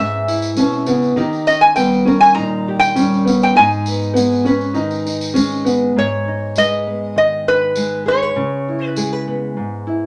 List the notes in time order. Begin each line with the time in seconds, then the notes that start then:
Already playing: G#3 B3 E4 B4 E5
0.00 G#2
0.28 E4, tambourine
0.42 tambourine
0.57 B2 C#4, tambourine
0.72 tambourine
0.86 C#3 B3, tambourine
1.02 tambourine
1.16 D#3 D#4 G4, tambourine
1.33 tambourine
1.47 C#4 D#5, tambourine
1.61 G#5
1.76 G3 B3 G5, tambourine
1.92 tambourine
2.05 C#4 A#4, tambourine
2.21 G#5, tambourine
2.35 A#2 D#4 A#5, tambourine
2.68 G4
2.79 G5, tambourine
2.95 G3 C#4, tambourine
3.12 tambourine
3.25 B3 C#4, tambourine
3.41 G5, tambourine
3.55 G#2 D#4 G#5, tambourine
3.71 tambourine
3.86 B3, tambourine
4.01 tambourine
4.13 G#3 B3, tambourine
4.31 tambourine
4.45 C#4 B4, tambourine
4.61 tambourine
4.74 D#3 D#4, tambourine
4.91 tambourine
5.06 D#4, tambourine
5.21 tambourine
5.34 G#3 C#4, tambourine
5.51 tambourine
5.65 B3, tambourine
5.96 G#2 C#5
6.28 D#4
6.56 G#3 B4 D#5, tambourine
6.87 B3
7.16 D#3 D#5
7.48 D#4 B4
7.76 G#3, tambourine
8.06 G#4 C#5
8.22 B4
8.36 C#3
8.68 E4
8.87 B4
8.96 G#3 G#4, tambourine
9.13 B4
9.27 B3
9.57 G#2
9.87 E4